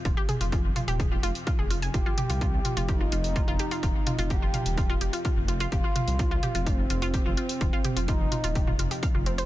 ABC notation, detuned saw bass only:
X:1
M:4/4
L:1/16
Q:1/4=127
K:Cphr
V:1 name="Detuned saw bass" clef=bass
E,,, z2 F,,,3 z E,,,3 F,,, z2 F,,,3 | F,,, z2 C,,3 z F,,,3 F,,,3 F,,, z2 | E,,, z2 F,,,3 z E,,,3 F,,, z2 F,,,3 | F,,, z2 C,,3 z F,,,3 F,,,3 F,,, z2 |
E,,, z2 F,,,3 z E,,,3 F,,, z2 F,,,3 |]